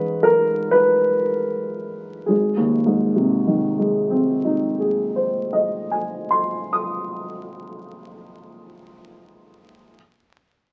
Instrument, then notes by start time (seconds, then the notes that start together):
upright piano
Already playing: G#2 E3 G#3 C#4 B4
0.23 A#4
0.71 B4
2.26 G#1 G#4
2.57 D#2
2.86 G#2
3.16 C3
3.47 D#3
3.79 G#3
4.10 C4
4.45 D#4
4.79 G#4
5.16 C5
5.53 D#5
5.91 G#5
6.31 C6
6.73 D#6